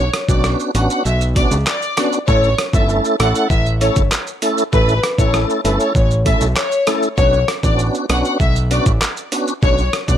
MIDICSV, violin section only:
0, 0, Header, 1, 2, 480
1, 0, Start_track
1, 0, Key_signature, 2, "minor"
1, 0, Tempo, 612245
1, 1787, Time_signature, 4, 2, 24, 8
1, 7979, End_track
2, 0, Start_track
2, 0, Title_t, "Violin section"
2, 0, Program_c, 0, 48
2, 225, Note_on_c, 0, 74, 83
2, 313, Note_off_c, 0, 74, 0
2, 585, Note_on_c, 0, 78, 76
2, 673, Note_off_c, 0, 78, 0
2, 705, Note_on_c, 0, 78, 75
2, 792, Note_off_c, 0, 78, 0
2, 825, Note_on_c, 0, 76, 86
2, 913, Note_off_c, 0, 76, 0
2, 1064, Note_on_c, 0, 74, 87
2, 1152, Note_off_c, 0, 74, 0
2, 1304, Note_on_c, 0, 74, 84
2, 1644, Note_off_c, 0, 74, 0
2, 1785, Note_on_c, 0, 73, 108
2, 1960, Note_off_c, 0, 73, 0
2, 2145, Note_on_c, 0, 76, 78
2, 2233, Note_off_c, 0, 76, 0
2, 2504, Note_on_c, 0, 78, 88
2, 2592, Note_off_c, 0, 78, 0
2, 2625, Note_on_c, 0, 78, 76
2, 2713, Note_off_c, 0, 78, 0
2, 2745, Note_on_c, 0, 76, 96
2, 2833, Note_off_c, 0, 76, 0
2, 2985, Note_on_c, 0, 73, 86
2, 3072, Note_off_c, 0, 73, 0
2, 3705, Note_on_c, 0, 71, 107
2, 3879, Note_off_c, 0, 71, 0
2, 4066, Note_on_c, 0, 73, 82
2, 4153, Note_off_c, 0, 73, 0
2, 4427, Note_on_c, 0, 71, 75
2, 4514, Note_off_c, 0, 71, 0
2, 4546, Note_on_c, 0, 73, 75
2, 4633, Note_off_c, 0, 73, 0
2, 4667, Note_on_c, 0, 73, 85
2, 4754, Note_off_c, 0, 73, 0
2, 4905, Note_on_c, 0, 76, 85
2, 4993, Note_off_c, 0, 76, 0
2, 5147, Note_on_c, 0, 73, 82
2, 5485, Note_off_c, 0, 73, 0
2, 5629, Note_on_c, 0, 73, 105
2, 5802, Note_off_c, 0, 73, 0
2, 5988, Note_on_c, 0, 74, 81
2, 6074, Note_off_c, 0, 74, 0
2, 6347, Note_on_c, 0, 78, 87
2, 6434, Note_off_c, 0, 78, 0
2, 6465, Note_on_c, 0, 78, 78
2, 6553, Note_off_c, 0, 78, 0
2, 6586, Note_on_c, 0, 76, 90
2, 6673, Note_off_c, 0, 76, 0
2, 6827, Note_on_c, 0, 74, 84
2, 6913, Note_off_c, 0, 74, 0
2, 7546, Note_on_c, 0, 73, 110
2, 7720, Note_off_c, 0, 73, 0
2, 7907, Note_on_c, 0, 74, 83
2, 7979, Note_off_c, 0, 74, 0
2, 7979, End_track
0, 0, End_of_file